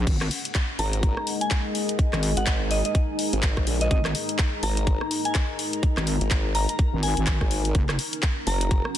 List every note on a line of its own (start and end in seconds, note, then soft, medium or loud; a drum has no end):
0.00 1.55 C#4 medium
0.00 1.97 F#5 medium
0.07 0.29 G#1 loud
0.07 7.71 G#3 medium
0.07 8.83 D#4 medium
0.07 7.71 G#4 medium
0.07 8.98 A#4 medium
0.07 7.71 D#5 loud
0.07 kick loud
0.07 closed hi-hat medium
0.07 crash medium
0.21 8.98 A#4 medium
0.21 cross-stick medium
0.21 clap soft
0.31 open hi-hat loud
0.45 closed hi-hat medium
0.55 kick loud
0.55 clap loud
0.55 closed hi-hat medium
0.75 1.15 G#1 loud
0.75 3.97 G#5 medium
0.75 1.27 A#5 medium
0.75 open hi-hat medium
0.93 closed hi-hat medium
1.03 kick loud
1.03 closed hi-hat medium
1.17 cross-stick medium
1.27 open hi-hat loud
1.41 1.55 G#5 medium
1.41 closed hi-hat medium
1.51 kick loud
1.51 clap loud
1.51 closed hi-hat medium
1.75 open hi-hat medium
1.89 closed hi-hat medium
1.99 kick loud
1.99 closed hi-hat medium
2.13 2.35 G#1 loud
2.13 cross-stick medium
2.13 clap soft
2.23 open hi-hat loud
2.37 2.83 G#1 loud
2.37 2.51 F#5 medium
2.37 closed hi-hat medium
2.47 kick loud
2.47 clap loud
2.47 closed hi-hat medium
2.71 2.80 D#5 medium
2.71 open hi-hat medium
2.85 2.91 D#5 medium
2.85 closed hi-hat medium
2.95 kick loud
2.95 closed hi-hat medium
3.19 open hi-hat loud
3.33 3.55 G#1 loud
3.33 closed hi-hat medium
3.43 kick loud
3.43 clap loud
3.43 closed hi-hat medium
3.57 3.65 G#1 loud
3.57 kick medium
3.57 cross-stick medium
3.67 3.89 A#1 loud
3.67 open hi-hat medium
3.81 3.87 D#5 medium
3.81 8.41 A#5 medium
3.81 closed hi-hat medium
3.91 4.13 G#1 loud
3.91 4.00 D#5 medium
3.91 kick loud
3.91 closed hi-hat medium
4.05 cross-stick medium
4.05 clap soft
4.15 open hi-hat loud
4.29 closed hi-hat medium
4.39 kick loud
4.39 clap loud
4.39 closed hi-hat medium
4.63 4.99 G#1 loud
4.63 5.11 A#5 medium
4.63 open hi-hat loud
4.77 closed hi-hat medium
4.87 kick loud
4.87 closed hi-hat medium
5.01 cross-stick medium
5.11 open hi-hat loud
5.25 5.39 G#5 medium
5.25 closed hi-hat medium
5.35 kick loud
5.35 clap loud
5.35 closed hi-hat medium
5.59 open hi-hat medium
5.73 closed hi-hat medium
5.83 kick loud
5.83 closed hi-hat medium
5.97 6.19 G#1 loud
5.97 cross-stick medium
5.97 clap soft
6.07 open hi-hat loud
6.21 6.67 G#1 loud
6.21 closed hi-hat medium
6.31 kick loud
6.31 clap loud
6.31 closed hi-hat medium
6.55 6.64 A#5 medium
6.55 open hi-hat medium
6.69 6.75 A#5 medium
6.69 closed hi-hat medium
6.79 kick loud
6.79 closed hi-hat soft
6.93 7.15 G#1 medium
7.03 7.71 G#5 medium
7.03 open hi-hat loud
7.17 7.39 G#1 loud
7.17 closed hi-hat medium
7.27 kick loud
7.27 clap loud
7.27 closed hi-hat medium
7.41 7.73 G#1 medium
7.41 kick medium
7.41 cross-stick medium
7.51 open hi-hat loud
7.65 closed hi-hat medium
7.75 7.97 F#1 loud
7.75 8.98 C#4 medium
7.75 8.98 F#4 medium
7.75 kick loud
7.75 closed hi-hat medium
7.89 cross-stick medium
7.89 clap soft
7.99 open hi-hat loud
8.13 closed hi-hat medium
8.20 8.98 F#5 medium
8.20 kick loud
8.20 clap loud
8.20 closed hi-hat soft
8.47 8.83 F#1 loud
8.47 8.95 A#5 medium
8.47 open hi-hat medium
8.61 closed hi-hat medium
8.71 kick loud
8.71 closed hi-hat soft
8.85 cross-stick medium
8.95 open hi-hat loud